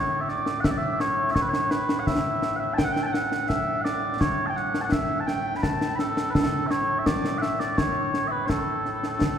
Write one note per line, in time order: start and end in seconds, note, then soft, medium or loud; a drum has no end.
0.00 9.38 A2 medium
0.00 0.21 C#5 medium
0.21 0.29 E5 medium
0.29 0.60 D5 medium
0.29 snare soft
0.46 snare medium
0.60 0.65 F#5 medium
0.60 concert bass drum medium
0.60 snare loud
0.65 0.71 E5 medium
0.71 0.78 D5 medium
0.78 1.00 E5 loud
1.00 1.31 C#5 medium
1.00 snare medium
1.31 1.35 E5 medium
1.35 1.42 C#5 medium
1.35 concert bass drum medium
1.35 snare medium
1.42 1.49 B4 medium
1.49 1.71 C#5 medium
1.53 snare medium
1.71 1.99 B4 medium
1.71 snare medium
1.89 snare medium
1.99 2.07 F#5 medium
2.07 2.56 E5 loud
2.07 concert bass drum medium
2.07 snare medium
2.42 snare medium
2.56 2.74 E5 medium
2.56 2.60 F#5 medium
2.74 2.84 G5 loud
2.74 2.78 A5 loud
2.78 concert bass drum medium
2.78 snare loud
2.84 2.92 F#5 loud
2.92 3.03 G5 loud
2.96 snare medium
3.03 3.13 G5 medium
3.03 3.06 A5 medium
3.13 3.49 F#5 medium
3.13 snare medium
3.32 snare medium
3.49 3.81 E5 loud
3.49 concert bass drum soft
3.49 snare medium
3.81 4.21 D5 medium
3.81 3.84 F#5 medium
3.85 snare medium
4.21 4.46 C#5 medium
4.21 concert bass drum medium
4.21 snare medium
4.46 4.56 G5 medium
4.46 4.50 A5 medium
4.56 4.81 F#5 medium
4.56 snare soft
4.74 snare medium
4.81 4.92 F#5 medium
4.81 4.84 A5 medium
4.92 5.20 E5 loud
4.92 concert bass drum medium
4.92 snare loud
5.20 5.27 A5 medium
5.27 5.56 G5 loud
5.27 snare medium
5.56 5.63 B5 medium
5.63 5.95 A5 loud
5.63 concert bass drum medium
5.63 snare medium
5.81 snare medium
5.95 6.30 A4 loud
5.95 5.99 B5 loud
5.95 snare medium
6.17 snare medium
6.30 6.67 A4 medium
6.30 6.34 B4 medium
6.35 concert bass drum medium
6.35 snare loud
6.67 6.71 E5 medium
6.71 6.99 C#5 medium
6.71 snare medium
6.99 7.06 E5 medium
7.06 7.38 D5 loud
7.06 concert bass drum medium
7.06 snare loud
7.25 snare medium
7.38 7.60 E5 loud
7.38 7.42 F#5 loud
7.42 snare medium
7.60 7.78 D5 medium
7.60 snare medium
7.78 8.28 C#5 medium
7.78 concert bass drum medium
7.78 snare medium
8.14 snare medium
8.28 8.46 B4 medium
8.28 8.31 E5 medium
8.46 9.38 A4 medium
8.46 8.49 C#5 medium
8.46 concert bass drum medium
8.46 snare medium
8.85 snare soft
9.03 snare medium
9.21 concert bass drum medium
9.21 snare loud